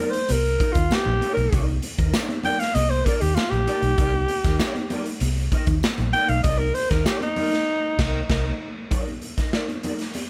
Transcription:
Already playing: alto saxophone A#4
0.00 clean electric guitar D#4 A#4 D5
0.10 alto saxophone C5, closed hi-hat
0.15 muted clean electric guitar stroke
0.29 fingered electric bass C2, alto saxophone A#4, closed hi-hat, muted conga, high conga
0.45 muted clean electric guitar stroke, closed hi-hat
0.60 clean electric guitar D#4 A#4 D#5, kick, closed hi-hat
0.73 fingered electric bass D#2, alto saxophone F4, muted clean electric guitar stroke, kick, closed hi-hat
0.91 alto saxophone G4, muted clean electric guitar stroke, muted fingered electric bass stroke, snare, tambourine, high conga
1.05 fingered electric bass A#1, muted clean electric guitar stroke, low conga
1.21 clean electric guitar D#4 A#4 D5, closed hi-hat, muted conga
1.34 fingered electric bass B1, alto saxophone A#4, muted clean electric guitar stroke, closed hi-hat
1.52 fingered electric bass C2, clean electric guitar D#4 A#4 D5, kick, closed hi-hat, muted conga
1.68 muted clean electric guitar stroke, closed hi-hat, high conga
1.82 muted clean electric guitar stroke, closed hi-hat, muted conga
1.98 fingered electric bass D#2, clean electric guitar D#4 A#4 D#5, kick, closed hi-hat
2.13 clean electric guitar D#4 A#4 D5, snare, tambourine, muted conga
2.29 muted clean electric guitar stroke, closed hi-hat, high conga
2.44 clean electric guitar D#4 A#4 D5, alto saxophone G5, closed hi-hat, muted conga, high conga, low conga
2.60 alto saxophone F5, muted clean electric guitar stroke, snare, closed hi-hat
2.75 fingered electric bass C2, alto saxophone D#5, closed hi-hat, high conga
2.90 alto saxophone C5, muted clean electric guitar stroke, closed hi-hat
3.05 clean electric guitar D#4 A#4 D#5, alto saxophone A#4, kick, closed hi-hat
3.21 fingered electric bass D#2, alto saxophone G4, muted clean electric guitar stroke, closed hi-hat
3.35 alto saxophone F4, muted clean electric guitar stroke, snare, tambourine, high conga
3.50 fingered electric bass A#1, alto saxophone G4, muted clean electric guitar stroke, closed hi-hat, low conga
3.67 clean electric guitar D#4 A#4 D5, closed hi-hat
3.82 fingered electric bass B1, muted clean electric guitar stroke, closed hi-hat
3.98 fingered electric bass C2, clean electric guitar D#4 A#4 D5, kick, closed hi-hat, muted conga
4.14 muted clean electric guitar stroke, high conga
4.28 muted clean electric guitar stroke, closed hi-hat, muted conga
4.44 fingered electric bass D#2, clean electric guitar D#4 A#4 D#5, kick, snare, closed hi-hat
4.59 clean electric guitar D#4 A#4 D5, snare, tambourine, muted conga
4.75 muted clean electric guitar stroke, closed hi-hat, high conga
4.90 clean electric guitar D#4 A#4 D5, closed hi-hat, muted conga, high conga, low conga
5.06 muted clean electric guitar stroke, closed hi-hat
5.20 fingered electric bass C2, closed hi-hat, muted conga, high conga
5.37 muted clean electric guitar stroke, closed hi-hat
5.52 clean electric guitar D#4 A#4 D#5, kick, closed hi-hat, muted conga
5.67 fingered electric bass D#2, muted clean electric guitar stroke, kick, closed hi-hat
5.83 muted clean electric guitar stroke, muted fingered electric bass stroke, snare, tambourine, high conga
5.98 fingered electric bass A#1, muted clean electric guitar stroke, closed hi-hat, low conga
6.13 clean electric guitar D#4 A#4 D5, alto saxophone G5, closed hi-hat, muted conga
6.28 fingered electric bass B1, alto saxophone F5, muted clean electric guitar stroke, closed hi-hat
6.44 fingered electric bass C2, clean electric guitar D#4 A#4 D5, alto saxophone D#5, kick, closed hi-hat, muted conga
6.59 alto saxophone A#4, muted clean electric guitar stroke, closed hi-hat, high conga
6.75 alto saxophone C5, muted clean electric guitar stroke, closed hi-hat, muted conga
6.90 fingered electric bass D#2, clean electric guitar D#4 A#4 D#5, alto saxophone A#4, kick, snare, closed hi-hat
7.05 clean electric guitar D#4 A#4 D5, alto saxophone G4, snare, tambourine
7.21 alto saxophone D#4, muted clean electric guitar stroke, closed hi-hat, high conga
7.36 clean electric guitar D#4 A#4 D5, open hi-hat, muted conga, high conga, low conga
7.52 muted clean electric guitar stroke, snare, closed hi-hat
7.98 fingered electric bass C2, clean electric guitar D#4 A#4 D#5, kick, snare, crash
8.28 fingered electric bass C2, clean electric guitar D#4 A#4 D#5, kick, snare, crash
8.91 clean electric guitar D#4 A#4 D5, kick, closed hi-hat, low conga
9.07 muted clean electric guitar stroke, closed hi-hat, high conga
9.22 muted clean electric guitar stroke, closed hi-hat
9.37 clean electric guitar D#4 A#4 D#5, kick, snare, closed hi-hat
9.52 clean electric guitar D#4 A#4 D5, snare
9.68 muted clean electric guitar stroke, closed hi-hat, high conga
9.83 clean electric guitar D#4 A#4 D5, closed hi-hat, muted conga, high conga, low conga
9.99 muted clean electric guitar stroke, snare, closed hi-hat
10.14 closed hi-hat, muted conga, high conga

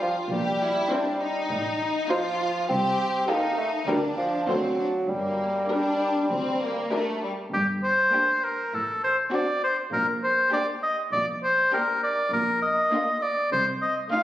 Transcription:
Already playing: viola section D4 F4, violin section F4 A#4
0.02 bassoon F3
0.31 double bass section A#1, cello section A#2, bassoon G3, violin section G4
0.62 violin section E4
0.91 viola section C4 E4, violin section D4 C5
1.21 violin section D#4
1.50 double bass section A1, cello section A2
2.10 bassoon F3, viola section D#4 F4, violin section F4 C5
2.69 double bass section C2, cello section C2, bassoon C4, violin section G4
3.28 bassoon A#3, viola section D#4 G4, violin section D#4 A4
3.58 bassoon A3
3.88 double bass section D2, cello section D2, bassoon G3, violin section D4 A#4, viola section D4 G4
4.18 bassoon F3
4.48 double bass section D2, cello section D2, bassoon F#3, violin section C4 C5, viola section D4 A4
4.79 violin section D4
5.09 double bass section G1, cello section G2, bassoon G3, violin section A#3
5.70 viola section D4 G4, violin section D4 A#4
6.31 cello section D2, double bass section D2, violin section C4
6.62 violin section A#3
6.92 violin section A3 A#4, viola section D4 G4
7.23 violin section G3
7.52 double bass section G1, cello section G2, oboe G4
7.84 oboe C5
8.13 viola section A#3, violin section D4 G4
8.44 oboe A#4
8.73 double bass section A1, cello section A2, oboe A4
9.04 oboe C5
9.32 viola section C4, violin section D4 F#4, oboe D5
9.64 oboe C5
9.93 double bass section A#1, cello section A#2, oboe A#4
10.24 oboe C5
10.52 viola section A#3, violin section D4 G4, oboe D5
10.83 oboe D#5
11.12 double bass section A#1, cello section A#2, oboe D5
11.43 oboe C5
11.72 viola section A#3, violin section D4 G4, oboe A#4
12.03 oboe D5
12.32 double bass section A#1, cello section A#2, oboe A#4
12.62 oboe D#5
12.93 viola section A#3, violin section D4 F4
13.22 oboe D5
13.52 double bass section C2, cello section C3, oboe C5
13.82 oboe D#5
14.11 viola section A3, violin section D#4 F4, oboe F5

